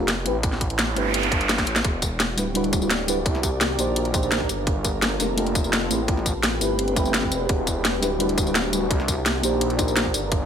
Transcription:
Already playing: detuned saw bass F1
0.00 fm electric piano G4 A#4
0.08 snare, closed hi-hat
0.24 detuned saw bass A1, fm electric piano A3 C4 E4 G4 B4, closed hi-hat
0.43 kick, closed hi-hat, noise sweep
0.52 snare
0.61 kick, closed hi-hat
0.70 detuned saw bass A1, closed hi-hat
0.79 snare, closed hi-hat
0.95 detuned saw bass G1, fm electric piano A3 C4 E4 G4 B4, closed hi-hat
1.14 closed hi-hat
1.23 closed hi-hat
1.32 kick, closed hi-hat
1.41 closed hi-hat
1.49 snare, closed hi-hat
1.58 kick, snare, closed hi-hat
1.67 detuned saw bass A1, closed hi-hat
1.76 snare
1.85 detuned saw bass E1, ambient pad F#4 G4 D5, kick, closed hi-hat
2.02 kick, closed hi-hat, tambourine
2.20 snare, closed hi-hat
2.36 detuned saw bass D1, fm electric piano G3 D4 E4 F#4 B4, snare, closed hi-hat, tambourine
2.54 fm electric piano G3 D4 E4 F#4 B4, closed hi-hat
2.64 closed hi-hat
2.73 kick, closed hi-hat, tambourine
2.80 fm electric piano G3 D4 E4 F#4 B4, tambourine
2.90 snare, closed hi-hat
3.07 fm electric piano G3 D4 E4 F#4 B4, closed hi-hat, tambourine
3.26 detuned saw bass C2, ambient pad D#3 A#4, kick, closed hi-hat
3.35 snare
3.43 kick, closed hi-hat, tambourine
3.52 detuned saw bass C2
3.61 snare, closed hi-hat
3.77 detuned saw bass A#1, fm electric piano A#3 D4 D#4 G4 C5, closed hi-hat, tambourine
3.96 closed hi-hat
4.05 closed hi-hat
4.12 fm electric piano A#3 D4 D#4 G4 C5, kick, closed hi-hat, tambourine
4.23 tambourine
4.32 snare, closed hi-hat
4.41 kick
4.49 detuned saw bass G1, ambient pad A#3 F4 A4, closed hi-hat, tambourine
4.67 kick, closed hi-hat
4.85 kick, closed hi-hat, tambourine
4.94 detuned saw bass G1
5.02 snare, closed hi-hat
5.19 detuned saw bass F1, fm electric piano A3 D4 F4 G4 A#4, snare, closed hi-hat, tambourine
5.36 fm electric piano A3 D4 F4 G4 A#4, closed hi-hat
5.47 closed hi-hat
5.55 kick, closed hi-hat, tambourine
5.63 fm electric piano A3 D4 F4 G4 A#4, tambourine
5.73 snare, closed hi-hat
5.89 detuned saw bass A1, fm electric piano A3 C4 E4 G4 B4, ambient pad C4 G4 B4, closed hi-hat, tambourine
6.08 kick, closed hi-hat
6.17 snare
6.26 kick, closed hi-hat, tambourine
6.35 detuned saw bass A1
6.43 snare, closed hi-hat
6.60 detuned saw bass G1, fm electric piano A3 C4 E4 G4 B4, closed hi-hat, tambourine
6.79 closed hi-hat
6.88 closed hi-hat
6.94 fm electric piano A3 C4 E4, kick, closed hi-hat, tambourine
6.98 fm electric piano G4 B4
7.05 tambourine
7.14 detuned saw bass G1, snare, closed hi-hat
7.23 kick
7.32 detuned saw bass E1, closed hi-hat, tambourine
7.49 detuned saw bass E1, ambient pad D4 F#4, kick, closed hi-hat
7.67 kick, closed hi-hat, tambourine
7.85 snare, closed hi-hat
8.01 detuned saw bass D1, fm electric piano G3 D4 E4 F#4 B4, snare, closed hi-hat, tambourine
8.19 fm electric piano G3 D4 E4 F#4 B4, closed hi-hat
8.29 closed hi-hat
8.38 kick, closed hi-hat, tambourine
8.45 fm electric piano G3 D4 E4 F#4 B4, tambourine
8.55 snare, closed hi-hat
8.72 fm electric piano G3 D4 E4 F#4 B4, closed hi-hat, tambourine
8.90 detuned saw bass C2, ambient pad D#3 A#4 D5, kick, closed hi-hat
9.00 snare
9.08 kick, closed hi-hat, tambourine
9.17 detuned saw bass C2
9.26 snare, closed hi-hat
9.42 detuned saw bass A#1, fm electric piano A#3 D4 D#4 G4 C5, closed hi-hat, tambourine
9.61 closed hi-hat
9.70 closed hi-hat
9.77 fm electric piano A#3 D4 D#4 G4 C5, kick, closed hi-hat, tambourine
9.88 tambourine
9.96 snare, closed hi-hat
10.05 kick
10.14 detuned saw bass G1, ambient pad A#3 F4 A4, closed hi-hat, tambourine
10.32 kick, closed hi-hat

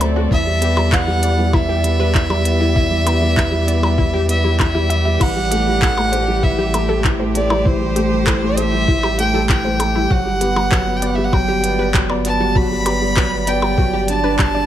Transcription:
Already playing: sub bass D2, string quartet F#3 C4 A4 D5, upright piano F#3 A3 C4
0.01 upright piano C4, closed hi-hat, percussion blips
0.16 upright piano A3, synth arpeggio sound F#4
0.31 sub bass E2, string quartet E3, upright piano E3, synth arpeggio sound E4, violin E5, kick
0.47 upright piano G3
0.58 string quartet B3 G4, upright piano B3, synth arpeggio sound G4, closed hi-hat
0.77 upright piano G3, percussion blips
0.92 upright piano E3, synth arpeggio sound B4, violin F#5, kick, clap
1.07 upright piano G3
1.23 upright piano B3, synth arpeggio sound D5, closed hi-hat
1.38 upright piano G3
1.53 upright piano E3, synth arpeggio sound E4, violin E5, kick, percussion blips
1.69 upright piano G3, synth arpeggio sound G4
1.84 upright piano B3, closed hi-hat
1.99 upright piano G3, synth arpeggio sound B4
2.14 upright piano E3, kick, clap
2.30 upright piano G3, synth arpeggio sound D5, percussion blips
2.45 upright piano B3, closed hi-hat
2.61 upright piano G3, synth arpeggio sound E4
2.75 upright piano E3, synth arpeggio sound E4, kick
2.90 upright piano G3
3.06 upright piano B3, synth arpeggio sound G4, closed hi-hat, percussion blips
3.22 upright piano G3
3.36 upright piano E3, synth arpeggio sound B4, kick, clap
3.52 upright piano G3
3.67 upright piano B3, synth arpeggio sound D5, closed hi-hat
3.83 upright piano G3, percussion blips
3.98 upright piano E3, synth arpeggio sound E4, kick
4.13 upright piano G3, synth arpeggio sound G4
4.28 upright piano B3, violin E5, closed hi-hat
4.44 upright piano G3, synth arpeggio sound E4
4.59 upright piano E3, synth arpeggio sound E4, violin E5, kick, clap, percussion blips
4.75 upright piano G3, synth arpeggio sound E4
4.90 upright piano B3, synth arpeggio sound E5, closed hi-hat
5.05 upright piano G3, synth arpeggio sound E5
5.20 sub bass A1, upright piano E3, synth arpeggio sound E4, violin F#5, kick, crash, percussion blips
5.36 upright piano G3
5.51 upright piano A3, synth arpeggio sound G4, closed hi-hat
5.67 upright piano G3
5.72 string quartet A3
5.82 upright piano E3, synth arpeggio sound A4, kick, clap
5.98 upright piano A3, percussion blips
6.12 upright piano A3, synth arpeggio sound C5, closed hi-hat
6.28 upright piano G3
6.43 upright piano E3, synth arpeggio sound E4, violin E5, kick
6.58 upright piano G3, synth arpeggio sound G4
6.74 upright piano A3, closed hi-hat, percussion blips
6.89 upright piano G3, synth arpeggio sound A4, string quartet C5
7.04 upright piano E3, kick, clap
7.19 upright piano A3, synth arpeggio sound C5
7.35 upright piano A3, violin D5, closed hi-hat
7.50 upright piano G3, synth arpeggio sound E4, percussion blips
7.65 upright piano E3, synth arpeggio sound E4, violin C5, kick
7.81 upright piano G3
7.96 upright piano A3, synth arpeggio sound G4, closed hi-hat
8.12 upright piano G3
8.27 upright piano E3, synth arpeggio sound A4, kick, clap, percussion blips
8.43 upright piano A3
8.57 upright piano A3, synth arpeggio sound C5, violin E5, closed hi-hat
8.73 upright piano G3
8.88 upright piano E3, synth arpeggio sound E4, kick
9.03 upright piano G3, synth arpeggio sound G4, percussion blips
9.19 upright piano A3, violin G5, closed hi-hat
9.34 upright piano G3, synth arpeggio sound A4
9.49 upright piano E3, violin G5, kick, clap
9.65 upright piano A3, synth arpeggio sound C5
9.79 upright piano A3, closed hi-hat, percussion blips
9.95 upright piano G3, synth arpeggio sound E4
10.10 sub bass G1, upright piano F#3, synth arpeggio sound F#4, violin F#5, kick
10.25 upright piano G3
10.41 upright piano B3, synth arpeggio sound G4, closed hi-hat
10.56 upright piano G3, percussion blips
10.66 string quartet B3
10.71 upright piano F#3, synth arpeggio sound B4, kick, clap
10.87 upright piano B3
10.97 violin G5
11.02 upright piano B3, synth arpeggio sound D5, closed hi-hat
11.06 violin F#5
11.15 upright piano G3, violin E5
11.24 violin F#5
11.33 upright piano F#3, synth arpeggio sound F#4, violin G5, kick, percussion blips
11.48 upright piano G3, synth arpeggio sound G4
11.59 string quartet D5
11.64 upright piano B3, closed hi-hat
11.79 upright piano G3, synth arpeggio sound B4
11.94 upright piano F#3, kick, clap
12.10 upright piano B3, synth arpeggio sound D5, percussion blips
12.25 upright piano B3, violin A5, closed hi-hat
12.40 upright piano G3, synth arpeggio sound F#4
12.55 upright piano F#3, synth arpeggio sound F#4, violin B5, kick
12.71 upright piano G3
12.86 upright piano B3, synth arpeggio sound G4, closed hi-hat, percussion blips
13.02 upright piano G3
13.16 upright piano F#3, synth arpeggio sound B4, kick, clap
13.32 upright piano B3
13.47 upright piano B3, synth arpeggio sound D5, violin G5, closed hi-hat
13.62 upright piano G3, percussion blips
13.78 upright piano F#3, synth arpeggio sound F#4, kick
13.93 upright piano G3, synth arpeggio sound G4
14.08 upright piano D4, violin A5, closed hi-hat
14.24 upright piano D4, synth arpeggio sound B4
14.39 upright piano G3, violin A5, kick, clap, percussion blips
14.54 upright piano D4, synth arpeggio sound D5

